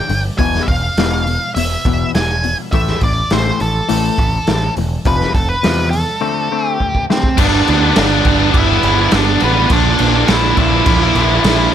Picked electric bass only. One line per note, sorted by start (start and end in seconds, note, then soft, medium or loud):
0.09 0.29 G1 medium
0.39 0.58 E1 medium
0.68 0.88 E1 medium
0.97 1.36 E1 medium
1.56 1.76 E1 medium
1.85 2.05 E1 medium
2.15 2.54 E1 medium
2.73 2.92 A1 medium
3.02 3.21 A1 medium
3.32 3.51 A1 medium
3.61 3.80 A1 medium
3.90 4.09 A1 medium
4.18 4.38 A1 medium
4.49 4.68 A1 medium
4.77 4.97 E1 medium
5.05 5.25 F1 medium
5.34 5.54 F1 medium
5.65 6.03 E2 medium
7.38 7.61 G1 medium
7.69 7.91 D2 medium
7.97 8.20 G1 medium
8.26 8.49 G1 medium
8.54 8.78 G1 medium
8.83 9.07 G1 medium
9.13 9.36 G1 medium
9.42 9.65 A1 medium
9.70 9.94 A#1 medium
10.00 10.23 A#1 medium
10.29 10.52 A#1 loud
10.58 10.81 A#1 medium
10.87 11.10 A#1 medium
11.15 11.38 A#1 medium
11.44 11.67 A#1 medium